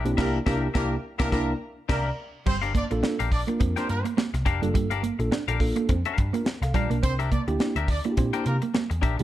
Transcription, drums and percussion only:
0.06 closed hi-hat medium
0.18 kick medium
0.18 snare loud
0.18 crash medium
0.46 kick loud
0.46 snare loud
0.75 kick loud
0.75 snare loud
1.20 kick loud
1.20 snare loud
1.32 kick loud
1.32 snare loud
1.89 kick loud
1.89 snare loud
1.89 crash medium
2.47 kick loud
2.47 crash medium
2.63 closed hi-hat soft
2.75 kick medium
2.75 closed hi-hat medium
2.91 closed hi-hat soft
3.04 snare loud
3.20 closed hi-hat medium
3.32 kick medium
3.32 open hi-hat medium
3.48 closed hi-hat medium
3.60 kick loud
3.60 closed hi-hat medium
3.77 snare soft
3.77 closed hi-hat soft
3.89 closed hi-hat medium
4.05 closed hi-hat medium
4.18 snare loud
4.34 snare soft
4.34 closed hi-hat soft
4.46 kick loud
4.46 closed hi-hat medium
4.63 closed hi-hat medium
4.75 kick loud
4.75 closed hi-hat loud
4.91 closed hi-hat soft
5.04 closed hi-hat medium
5.20 closed hi-hat soft
5.32 snare loud
5.48 closed hi-hat medium
5.60 kick medium
5.60 open hi-hat medium
5.76 closed hi-hat medium
5.89 kick loud
5.89 closed hi-hat medium
6.05 closed hi-hat soft
6.18 kick medium
6.18 closed hi-hat medium
6.34 closed hi-hat medium
6.46 snare loud
6.62 snare soft
6.62 closed hi-hat medium
6.74 kick medium
6.74 closed hi-hat medium
6.91 closed hi-hat medium
7.03 kick loud
7.03 closed hi-hat loud
7.20 closed hi-hat soft
7.32 kick medium
7.32 closed hi-hat medium
7.48 closed hi-hat soft
7.60 snare loud
7.76 closed hi-hat medium
7.88 kick medium
7.88 open hi-hat medium
8.04 closed hi-hat medium
8.17 kick medium
8.17 closed hi-hat medium
8.33 closed hi-hat medium
8.46 closed hi-hat medium
8.62 closed hi-hat medium
8.74 snare loud
8.91 closed hi-hat medium
9.03 kick medium
9.03 closed hi-hat medium
9.19 closed hi-hat medium

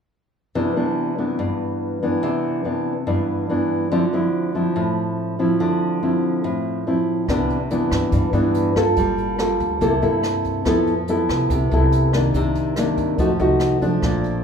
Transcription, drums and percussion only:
7.28 kick soft
7.28 cross-stick soft
7.28 closed hi-hat soft
7.50 closed hi-hat soft
7.70 closed hi-hat soft
7.91 kick soft
7.91 cross-stick medium
7.91 closed hi-hat soft
8.12 kick medium
8.12 closed hi-hat soft
8.33 closed hi-hat soft
8.54 closed hi-hat soft
8.76 kick soft
8.76 cross-stick soft
8.76 closed hi-hat soft
8.96 kick soft
8.96 closed hi-hat soft
9.18 closed hi-hat soft
9.39 cross-stick medium
9.39 closed hi-hat soft
9.60 kick soft
9.60 closed hi-hat soft
9.81 kick soft
9.81 closed hi-hat soft
10.02 closed hi-hat soft
10.23 cross-stick medium
10.23 closed hi-hat soft
10.44 kick soft
10.44 closed hi-hat soft
10.65 kick soft
10.65 cross-stick soft
10.65 closed hi-hat soft
10.87 closed hi-hat soft
11.08 closed hi-hat soft
11.29 kick soft
11.29 cross-stick medium
11.29 closed hi-hat soft
11.50 kick medium
11.50 closed hi-hat soft
11.71 closed hi-hat soft
11.92 closed hi-hat soft
12.13 kick soft
12.13 cross-stick medium
12.13 closed hi-hat soft
12.34 kick soft
12.34 closed hi-hat soft
12.55 closed hi-hat soft
12.76 cross-stick soft
12.76 closed hi-hat soft
12.97 kick soft
12.97 closed hi-hat soft
13.18 kick medium
13.18 closed hi-hat soft
13.39 closed hi-hat soft
13.60 cross-stick soft
13.60 closed hi-hat soft
13.81 kick soft
13.81 closed hi-hat soft
14.02 kick soft
14.02 cross-stick soft
14.02 closed hi-hat soft
14.24 closed hi-hat soft

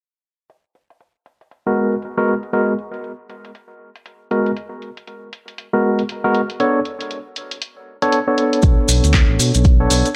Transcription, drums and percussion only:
0.50 closed hi-hat medium
0.75 closed hi-hat soft
0.90 closed hi-hat soft
1.01 closed hi-hat soft
1.26 closed hi-hat medium
1.41 closed hi-hat soft
1.51 closed hi-hat medium
1.92 closed hi-hat soft
2.02 closed hi-hat medium
2.28 closed hi-hat medium
2.43 closed hi-hat soft
2.53 closed hi-hat medium
2.79 closed hi-hat soft
2.94 closed hi-hat soft
3.04 closed hi-hat soft
3.30 closed hi-hat medium
3.45 closed hi-hat medium
3.55 closed hi-hat medium
3.96 closed hi-hat soft
4.06 closed hi-hat medium
4.31 closed hi-hat medium
4.46 closed hi-hat soft
4.57 closed hi-hat medium
4.82 closed hi-hat soft
4.97 closed hi-hat soft
5.07 closed hi-hat soft
5.33 closed hi-hat medium
5.48 closed hi-hat soft
5.58 closed hi-hat medium
5.99 closed hi-hat soft
6.09 closed hi-hat medium
6.35 closed hi-hat medium
6.50 closed hi-hat soft
6.60 closed hi-hat medium
6.85 closed hi-hat soft
7.01 closed hi-hat soft
7.11 closed hi-hat soft
7.36 closed hi-hat medium
7.51 closed hi-hat soft
7.62 closed hi-hat medium
8.02 closed hi-hat soft
8.12 closed hi-hat medium
8.38 closed hi-hat medium
8.53 closed hi-hat soft
8.62 kick loud
8.62 closed hi-hat medium
8.62 maracas soft
8.88 open hi-hat loud
8.88 maracas medium
9.04 closed hi-hat soft
9.04 maracas soft
9.14 kick medium
9.14 clap loud
9.14 closed hi-hat soft
9.14 maracas soft
9.39 open hi-hat medium
9.39 maracas medium
9.54 closed hi-hat soft
9.54 maracas medium
9.64 kick loud
9.64 closed hi-hat medium
9.64 maracas soft
9.90 open hi-hat loud
9.90 maracas medium
10.05 closed hi-hat soft
10.05 maracas soft

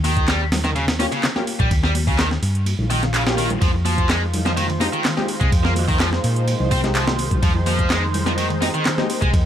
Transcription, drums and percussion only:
0.04 open hi-hat medium
0.04 ride medium
0.04 high conga medium
0.17 kick loud
0.17 closed hi-hat soft
0.17 muted conga soft
0.28 snare loud
0.28 clap loud
0.28 closed hi-hat soft
0.28 ride medium
0.52 snare loud
0.52 open hi-hat medium
0.52 ride medium
0.52 low conga medium
0.64 snare soft
0.64 closed hi-hat soft
0.75 closed hi-hat soft
0.75 ride medium
0.75 high conga medium
0.88 snare loud
0.88 ride medium
0.99 snare soft
0.99 open hi-hat medium
0.99 muted conga medium
1.12 closed hi-hat soft
1.12 ride medium
1.23 snare loud
1.23 clap loud
1.23 closed hi-hat soft
1.23 ride medium
1.36 snare soft
1.36 high conga medium
1.47 open hi-hat medium
1.47 ride medium
1.60 kick loud
1.60 closed hi-hat soft
1.71 kick loud
1.71 closed hi-hat soft
1.71 ride medium
1.84 snare medium
1.95 open hi-hat medium
1.95 ride medium
1.95 high conga medium
2.07 kick loud
2.07 open hi-hat medium
2.07 muted conga soft
2.19 snare loud
2.19 clap loud
2.19 closed hi-hat soft
2.19 ride medium
2.31 snare soft
2.43 open hi-hat medium
2.43 ride medium
2.55 closed hi-hat soft
2.66 closed hi-hat soft
2.66 ride medium
2.66 high conga medium
2.79 low conga medium
2.90 open hi-hat medium
2.90 ride medium
2.90 muted conga medium
3.03 snare soft
3.03 closed hi-hat soft
3.14 clap loud
3.14 closed hi-hat soft
3.14 ride medium
3.27 snare loud
3.27 high conga medium
3.37 open hi-hat medium
3.37 ride medium
3.37 muted conga medium
3.50 closed hi-hat soft
3.50 muted conga medium
3.50 low conga medium
3.62 kick loud
3.62 closed hi-hat soft
3.62 ride medium
3.85 open hi-hat medium
3.85 ride medium
3.85 high conga medium
3.98 kick loud
3.98 closed hi-hat soft
3.98 muted conga soft
4.10 snare loud
4.10 clap loud
4.10 closed hi-hat soft
4.10 ride medium
4.33 open hi-hat medium
4.33 ride medium
4.33 low conga medium
4.46 snare medium
4.46 closed hi-hat soft
4.57 closed hi-hat soft
4.57 ride loud
4.57 high conga medium
4.70 ride soft
4.80 snare medium
4.80 open hi-hat medium
4.80 ride medium
4.80 muted conga medium
4.93 closed hi-hat soft
5.05 snare loud
5.05 clap loud
5.05 closed hi-hat soft
5.05 ride medium
5.17 snare soft
5.17 high conga medium
5.28 open hi-hat medium
5.28 ride medium
5.41 kick loud
5.52 kick loud
5.52 closed hi-hat soft
5.52 ride medium
5.65 snare medium
5.76 open hi-hat medium
5.76 ride medium
5.76 high conga medium
5.88 kick medium
5.88 open hi-hat medium
6.00 snare loud
6.00 clap loud
6.00 closed hi-hat soft
6.00 ride medium
6.13 snare medium
6.24 open hi-hat medium
6.24 ride medium
6.36 closed hi-hat soft
6.47 closed hi-hat soft
6.47 ride medium
6.47 high conga medium
6.60 low conga medium
6.71 kick medium
6.71 open hi-hat medium
6.71 ride medium
6.71 muted conga medium
6.84 snare soft
6.84 closed hi-hat soft
6.95 clap loud
6.95 closed hi-hat soft
6.95 ride medium
7.08 snare loud
7.08 high conga medium
7.18 open hi-hat medium
7.18 ride medium
7.18 muted conga medium
7.31 kick loud
7.31 closed hi-hat soft
7.31 muted conga medium
7.31 low conga medium
7.43 kick loud
7.43 closed hi-hat soft
7.43 ride medium
7.66 open hi-hat medium
7.66 ride medium
7.66 high conga medium
7.79 kick medium
7.79 closed hi-hat soft
7.79 muted conga soft
7.90 snare loud
7.90 clap loud
7.90 closed hi-hat soft
7.90 ride medium
8.14 open hi-hat medium
8.14 ride medium
8.14 low conga medium
8.26 snare medium
8.26 closed hi-hat soft
8.38 closed hi-hat soft
8.38 ride loud
8.38 high conga medium
8.50 ride soft
8.62 snare medium
8.62 open hi-hat medium
8.62 ride medium
8.62 muted conga medium
8.74 closed hi-hat soft
8.86 snare loud
8.86 clap loud
8.86 closed hi-hat soft
8.86 ride medium
8.98 snare soft
8.98 high conga loud
9.10 open hi-hat medium
9.10 ride medium
9.22 kick loud
9.22 closed hi-hat soft
9.34 kick loud
9.34 closed hi-hat soft
9.34 ride medium

